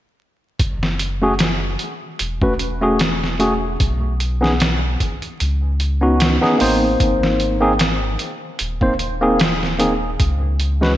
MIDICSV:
0, 0, Header, 1, 4, 480
1, 0, Start_track
1, 0, Tempo, 800000
1, 361, Time_signature, 4, 2, 24, 8
1, 6583, End_track
2, 0, Start_track
2, 0, Title_t, "Tine electric piano"
2, 0, Program_c, 0, 4
2, 730, Note_on_c, 0, 57, 82
2, 733, Note_on_c, 0, 61, 72
2, 736, Note_on_c, 0, 66, 79
2, 740, Note_on_c, 0, 68, 95
2, 794, Note_off_c, 0, 57, 0
2, 795, Note_off_c, 0, 61, 0
2, 797, Note_off_c, 0, 66, 0
2, 799, Note_off_c, 0, 68, 0
2, 1450, Note_on_c, 0, 57, 70
2, 1450, Note_on_c, 0, 61, 68
2, 1455, Note_on_c, 0, 66, 67
2, 1459, Note_on_c, 0, 71, 76
2, 1514, Note_off_c, 0, 57, 0
2, 1514, Note_off_c, 0, 61, 0
2, 1516, Note_off_c, 0, 66, 0
2, 1518, Note_off_c, 0, 71, 0
2, 1687, Note_on_c, 0, 57, 82
2, 1691, Note_on_c, 0, 61, 74
2, 1694, Note_on_c, 0, 66, 76
2, 1698, Note_on_c, 0, 68, 93
2, 1790, Note_off_c, 0, 57, 0
2, 1792, Note_off_c, 0, 61, 0
2, 1794, Note_off_c, 0, 66, 0
2, 1796, Note_off_c, 0, 68, 0
2, 2035, Note_on_c, 0, 57, 80
2, 2037, Note_on_c, 0, 61, 72
2, 2041, Note_on_c, 0, 66, 75
2, 2043, Note_on_c, 0, 68, 86
2, 2114, Note_off_c, 0, 57, 0
2, 2115, Note_off_c, 0, 61, 0
2, 2117, Note_off_c, 0, 66, 0
2, 2118, Note_off_c, 0, 68, 0
2, 2645, Note_on_c, 0, 59, 82
2, 2649, Note_on_c, 0, 61, 73
2, 2651, Note_on_c, 0, 63, 69
2, 2655, Note_on_c, 0, 68, 84
2, 2712, Note_off_c, 0, 59, 0
2, 2714, Note_off_c, 0, 61, 0
2, 2714, Note_off_c, 0, 63, 0
2, 2716, Note_off_c, 0, 68, 0
2, 3607, Note_on_c, 0, 59, 72
2, 3609, Note_on_c, 0, 61, 70
2, 3614, Note_on_c, 0, 63, 73
2, 3617, Note_on_c, 0, 66, 82
2, 3818, Note_off_c, 0, 59, 0
2, 3819, Note_off_c, 0, 61, 0
2, 3821, Note_off_c, 0, 63, 0
2, 3823, Note_off_c, 0, 66, 0
2, 3847, Note_on_c, 0, 59, 90
2, 3850, Note_on_c, 0, 61, 74
2, 3853, Note_on_c, 0, 63, 80
2, 3857, Note_on_c, 0, 68, 94
2, 3932, Note_off_c, 0, 59, 0
2, 3934, Note_off_c, 0, 61, 0
2, 3935, Note_off_c, 0, 63, 0
2, 3937, Note_off_c, 0, 68, 0
2, 3949, Note_on_c, 0, 58, 84
2, 3954, Note_on_c, 0, 60, 80
2, 3961, Note_on_c, 0, 63, 78
2, 3967, Note_on_c, 0, 72, 93
2, 4534, Note_off_c, 0, 58, 0
2, 4537, Note_off_c, 0, 60, 0
2, 4541, Note_off_c, 0, 63, 0
2, 4544, Note_off_c, 0, 72, 0
2, 4562, Note_on_c, 0, 58, 89
2, 4564, Note_on_c, 0, 60, 81
2, 4570, Note_on_c, 0, 63, 80
2, 4571, Note_on_c, 0, 68, 98
2, 4630, Note_off_c, 0, 58, 0
2, 4631, Note_off_c, 0, 60, 0
2, 4634, Note_off_c, 0, 63, 0
2, 4634, Note_off_c, 0, 68, 0
2, 5287, Note_on_c, 0, 58, 72
2, 5290, Note_on_c, 0, 60, 64
2, 5294, Note_on_c, 0, 63, 62
2, 5295, Note_on_c, 0, 72, 82
2, 5352, Note_off_c, 0, 58, 0
2, 5354, Note_off_c, 0, 60, 0
2, 5356, Note_off_c, 0, 63, 0
2, 5357, Note_off_c, 0, 72, 0
2, 5528, Note_on_c, 0, 58, 90
2, 5531, Note_on_c, 0, 60, 75
2, 5534, Note_on_c, 0, 63, 74
2, 5537, Note_on_c, 0, 68, 89
2, 5631, Note_off_c, 0, 58, 0
2, 5632, Note_off_c, 0, 60, 0
2, 5634, Note_off_c, 0, 63, 0
2, 5635, Note_off_c, 0, 68, 0
2, 5870, Note_on_c, 0, 58, 82
2, 5875, Note_on_c, 0, 60, 70
2, 5878, Note_on_c, 0, 63, 75
2, 5881, Note_on_c, 0, 68, 86
2, 5952, Note_off_c, 0, 58, 0
2, 5954, Note_off_c, 0, 60, 0
2, 5956, Note_off_c, 0, 63, 0
2, 5957, Note_off_c, 0, 68, 0
2, 6486, Note_on_c, 0, 56, 78
2, 6490, Note_on_c, 0, 61, 71
2, 6493, Note_on_c, 0, 66, 73
2, 6496, Note_on_c, 0, 71, 85
2, 6552, Note_off_c, 0, 56, 0
2, 6554, Note_off_c, 0, 61, 0
2, 6555, Note_off_c, 0, 66, 0
2, 6557, Note_off_c, 0, 71, 0
2, 6583, End_track
3, 0, Start_track
3, 0, Title_t, "Sub bass"
3, 0, Program_c, 1, 38
3, 358, Note_on_c, 1, 30, 95
3, 1059, Note_off_c, 1, 30, 0
3, 1322, Note_on_c, 1, 28, 84
3, 2260, Note_off_c, 1, 28, 0
3, 2281, Note_on_c, 1, 35, 93
3, 2980, Note_off_c, 1, 35, 0
3, 3246, Note_on_c, 1, 37, 94
3, 3829, Note_off_c, 1, 37, 0
3, 3965, Note_on_c, 1, 33, 74
3, 4177, Note_off_c, 1, 33, 0
3, 4202, Note_on_c, 1, 32, 94
3, 4900, Note_off_c, 1, 32, 0
3, 5163, Note_on_c, 1, 27, 87
3, 6101, Note_off_c, 1, 27, 0
3, 6120, Note_on_c, 1, 37, 96
3, 6583, Note_off_c, 1, 37, 0
3, 6583, End_track
4, 0, Start_track
4, 0, Title_t, "Drums"
4, 357, Note_on_c, 9, 36, 105
4, 357, Note_on_c, 9, 42, 77
4, 417, Note_off_c, 9, 36, 0
4, 417, Note_off_c, 9, 42, 0
4, 497, Note_on_c, 9, 38, 48
4, 557, Note_off_c, 9, 38, 0
4, 596, Note_on_c, 9, 42, 58
4, 656, Note_off_c, 9, 42, 0
4, 833, Note_on_c, 9, 42, 81
4, 842, Note_on_c, 9, 38, 103
4, 893, Note_off_c, 9, 42, 0
4, 902, Note_off_c, 9, 38, 0
4, 1075, Note_on_c, 9, 42, 59
4, 1135, Note_off_c, 9, 42, 0
4, 1316, Note_on_c, 9, 42, 77
4, 1376, Note_off_c, 9, 42, 0
4, 1449, Note_on_c, 9, 36, 81
4, 1509, Note_off_c, 9, 36, 0
4, 1557, Note_on_c, 9, 42, 61
4, 1617, Note_off_c, 9, 42, 0
4, 1796, Note_on_c, 9, 42, 76
4, 1805, Note_on_c, 9, 38, 103
4, 1856, Note_off_c, 9, 42, 0
4, 1865, Note_off_c, 9, 38, 0
4, 1941, Note_on_c, 9, 38, 38
4, 2001, Note_off_c, 9, 38, 0
4, 2039, Note_on_c, 9, 42, 58
4, 2099, Note_off_c, 9, 42, 0
4, 2280, Note_on_c, 9, 42, 79
4, 2281, Note_on_c, 9, 36, 106
4, 2340, Note_off_c, 9, 42, 0
4, 2341, Note_off_c, 9, 36, 0
4, 2522, Note_on_c, 9, 42, 61
4, 2581, Note_off_c, 9, 42, 0
4, 2665, Note_on_c, 9, 38, 39
4, 2725, Note_off_c, 9, 38, 0
4, 2761, Note_on_c, 9, 42, 83
4, 2770, Note_on_c, 9, 38, 114
4, 2821, Note_off_c, 9, 42, 0
4, 2830, Note_off_c, 9, 38, 0
4, 3002, Note_on_c, 9, 36, 80
4, 3003, Note_on_c, 9, 42, 59
4, 3062, Note_off_c, 9, 36, 0
4, 3063, Note_off_c, 9, 42, 0
4, 3133, Note_on_c, 9, 42, 38
4, 3193, Note_off_c, 9, 42, 0
4, 3242, Note_on_c, 9, 42, 76
4, 3302, Note_off_c, 9, 42, 0
4, 3479, Note_on_c, 9, 42, 60
4, 3539, Note_off_c, 9, 42, 0
4, 3721, Note_on_c, 9, 42, 73
4, 3730, Note_on_c, 9, 38, 105
4, 3781, Note_off_c, 9, 42, 0
4, 3790, Note_off_c, 9, 38, 0
4, 3862, Note_on_c, 9, 38, 40
4, 3922, Note_off_c, 9, 38, 0
4, 3960, Note_on_c, 9, 46, 71
4, 4020, Note_off_c, 9, 46, 0
4, 4200, Note_on_c, 9, 36, 105
4, 4201, Note_on_c, 9, 42, 79
4, 4260, Note_off_c, 9, 36, 0
4, 4261, Note_off_c, 9, 42, 0
4, 4340, Note_on_c, 9, 38, 47
4, 4400, Note_off_c, 9, 38, 0
4, 4439, Note_on_c, 9, 42, 58
4, 4499, Note_off_c, 9, 42, 0
4, 4676, Note_on_c, 9, 42, 82
4, 4685, Note_on_c, 9, 38, 108
4, 4736, Note_off_c, 9, 42, 0
4, 4745, Note_off_c, 9, 38, 0
4, 4915, Note_on_c, 9, 42, 61
4, 4975, Note_off_c, 9, 42, 0
4, 5153, Note_on_c, 9, 42, 71
4, 5213, Note_off_c, 9, 42, 0
4, 5287, Note_on_c, 9, 36, 88
4, 5347, Note_off_c, 9, 36, 0
4, 5396, Note_on_c, 9, 42, 59
4, 5456, Note_off_c, 9, 42, 0
4, 5637, Note_on_c, 9, 42, 77
4, 5646, Note_on_c, 9, 38, 109
4, 5697, Note_off_c, 9, 42, 0
4, 5706, Note_off_c, 9, 38, 0
4, 5778, Note_on_c, 9, 38, 42
4, 5838, Note_off_c, 9, 38, 0
4, 5877, Note_on_c, 9, 42, 61
4, 5937, Note_off_c, 9, 42, 0
4, 6117, Note_on_c, 9, 42, 75
4, 6118, Note_on_c, 9, 36, 101
4, 6177, Note_off_c, 9, 42, 0
4, 6178, Note_off_c, 9, 36, 0
4, 6357, Note_on_c, 9, 42, 60
4, 6417, Note_off_c, 9, 42, 0
4, 6498, Note_on_c, 9, 38, 41
4, 6558, Note_off_c, 9, 38, 0
4, 6583, End_track
0, 0, End_of_file